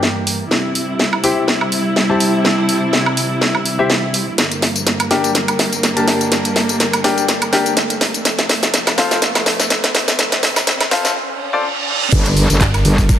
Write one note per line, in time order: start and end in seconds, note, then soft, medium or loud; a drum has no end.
0.00 0.47 G2 medium
0.00 0.49 E3 medium
0.00 0.47 A#3 medium
0.00 snare medium
0.00 riser medium
0.27 open hi-hat loud
0.51 4.34 C3 medium
0.51 4.34 G3 medium
0.51 4.34 E4 medium
0.51 snare medium
0.75 open hi-hat loud
0.99 snare medium
1.13 high woodblock medium
1.24 1.42 E4 medium
1.24 1.42 G4 medium
1.24 1.42 C5 medium
1.24 1.42 G5 loud
1.24 open hi-hat loud
1.48 snare medium
1.61 high woodblock medium
1.72 open hi-hat loud
1.96 snare medium
2.10 3.15 E4 medium
2.10 3.15 G4 medium
2.10 3.15 C5 medium
2.10 3.15 A5 medium
2.20 open hi-hat loud
2.45 snare medium
2.69 open hi-hat loud
2.93 snare medium
3.06 high woodblock medium
3.17 open hi-hat loud
3.41 snare medium
3.55 high woodblock medium
3.66 open hi-hat loud
3.79 3.89 E4 medium
3.79 3.89 G4 medium
3.79 3.89 C5 medium
3.79 3.89 E5 medium
3.90 snare medium
4.14 open hi-hat loud
4.38 8.21 G2 medium
4.38 8.21 D3 medium
4.38 8.21 A#3 medium
4.38 snare medium
4.38 closed hi-hat medium
4.38 tambourine medium
4.51 closed hi-hat soft
4.51 tambourine soft
4.62 snare medium
4.62 open hi-hat loud
4.76 closed hi-hat soft
4.76 tambourine medium
4.87 snare medium
4.87 closed hi-hat medium
4.87 tambourine medium
5.00 closed hi-hat soft
5.00 tambourine soft
5.00 high woodblock medium
5.11 5.29 D4 medium
5.11 5.29 G4 medium
5.11 5.29 A#4 medium
5.11 5.29 G5 loud
5.11 snare medium
5.11 open hi-hat loud
5.24 closed hi-hat soft
5.24 tambourine medium
5.35 snare medium
5.35 closed hi-hat medium
5.35 tambourine medium
5.48 closed hi-hat soft
5.48 tambourine soft
5.48 high woodblock medium
5.59 snare medium
5.59 open hi-hat loud
5.72 closed hi-hat soft
5.72 tambourine medium
5.83 snare medium
5.83 closed hi-hat medium
5.83 tambourine medium
5.97 7.02 D4 medium
5.97 7.02 G4 medium
5.97 7.02 A#4 medium
5.97 7.02 A5 medium
5.97 closed hi-hat soft
5.97 tambourine soft
6.08 snare medium
6.08 open hi-hat loud
6.21 closed hi-hat soft
6.21 tambourine medium
6.32 snare medium
6.32 closed hi-hat medium
6.32 tambourine medium
6.45 closed hi-hat soft
6.45 tambourine soft
6.56 snare medium
6.56 open hi-hat loud
6.69 closed hi-hat soft
6.69 tambourine medium
6.80 snare medium
6.80 closed hi-hat medium
6.80 tambourine medium
6.93 closed hi-hat medium
6.93 tambourine soft
6.93 high woodblock medium
7.04 7.23 D4 medium
7.04 7.23 G4 medium
7.04 7.23 A#4 medium
7.04 7.23 G5 loud
7.04 snare medium
7.04 open hi-hat loud
7.18 closed hi-hat soft
7.18 tambourine medium
7.28 snare medium
7.28 closed hi-hat medium
7.28 tambourine medium
7.42 closed hi-hat medium
7.42 tambourine soft
7.42 high woodblock medium
7.53 7.71 D4 medium
7.53 7.71 G4 medium
7.53 7.71 A#4 medium
7.53 7.71 G5 loud
7.53 snare medium
7.53 open hi-hat loud
7.66 closed hi-hat soft
7.66 tambourine medium
7.77 snare medium
7.77 closed hi-hat medium
7.77 tambourine medium
7.90 closed hi-hat medium
7.90 tambourine soft
8.01 snare medium
8.01 open hi-hat loud
8.14 closed hi-hat soft
8.14 tambourine medium
8.25 11.13 F2 medium
8.25 10.17 C3 medium
8.25 11.13 A3 medium
8.25 snare medium
8.25 closed hi-hat medium
8.25 tambourine medium
8.39 snare medium
8.39 closed hi-hat medium
8.39 tambourine soft
8.49 snare medium
8.49 open hi-hat loud
8.63 snare medium
8.63 closed hi-hat soft
8.63 tambourine medium
8.74 snare medium
8.74 closed hi-hat medium
8.74 tambourine medium
8.87 snare medium
8.87 closed hi-hat medium
8.87 tambourine soft
8.87 high woodblock medium
8.98 9.16 C4 medium
8.98 9.16 F4 medium
8.98 9.16 A4 medium
8.98 9.16 F5 loud
8.98 snare loud
8.98 open hi-hat loud
9.11 snare medium
9.11 closed hi-hat soft
9.11 tambourine medium
9.22 snare loud
9.22 closed hi-hat medium
9.22 tambourine medium
9.35 snare medium
9.35 closed hi-hat medium
9.35 tambourine soft
9.35 high woodblock medium
9.46 snare loud
9.46 open hi-hat loud
9.60 snare medium
9.60 closed hi-hat soft
9.60 tambourine medium
9.70 snare loud
9.70 closed hi-hat medium
9.70 tambourine medium
9.84 snare medium
9.84 closed hi-hat medium
9.84 tambourine soft
9.95 snare loud
9.95 open hi-hat loud
10.08 snare medium
10.08 closed hi-hat soft
10.08 tambourine medium
10.19 11.15 D3 medium
10.19 snare loud
10.19 closed hi-hat medium
10.19 tambourine medium
10.32 snare medium
10.32 closed hi-hat medium
10.32 tambourine soft
10.43 snare loud
10.43 open hi-hat loud
10.56 snare medium
10.56 closed hi-hat soft
10.56 tambourine medium
10.56 high woodblock medium
10.67 snare loud
10.67 closed hi-hat medium
10.67 tambourine medium
10.81 snare medium
10.81 closed hi-hat medium
10.81 tambourine soft
10.81 high woodblock medium
10.91 11.10 C4 medium
10.91 11.10 F4 medium
10.91 11.10 A4 medium
10.91 11.10 F5 loud
10.91 snare loud
10.91 open hi-hat loud
11.05 snare medium
11.05 closed hi-hat soft
11.05 tambourine medium
11.16 reverse cymbal medium
11.53 11.63 C4 medium
11.53 11.63 F4 medium
11.53 11.63 A4 medium
11.53 11.63 D5 loud
12.12 12.48 G1 medium
12.12 13.19 G3 medium
12.12 13.19 D4 medium
12.12 13.19 A#4 medium
12.12 kick loud
12.12 closed hi-hat medium
12.12 crash loud
12.12 tambourine medium
12.12 downlifter medium
12.12 shaker medium
12.26 closed hi-hat medium
12.26 tambourine soft
12.37 open hi-hat loud
12.37 shaker medium
12.50 12.59 G1 loud
12.50 closed hi-hat soft
12.50 tambourine medium
12.60 12.83 G1 loud
12.60 kick loud
12.60 snare loud
12.60 clap loud
12.60 closed hi-hat medium
12.60 tambourine medium
12.60 shaker medium
12.74 snare soft
12.74 closed hi-hat medium
12.74 tambourine soft
12.74 high woodblock medium
12.85 13.07 G1 loud
12.85 open hi-hat loud
12.85 shaker medium
12.98 kick medium
12.98 snare medium
12.98 closed hi-hat soft
12.98 tambourine medium
13.09 kick loud
13.09 closed hi-hat medium
13.09 tambourine medium
13.09 shaker medium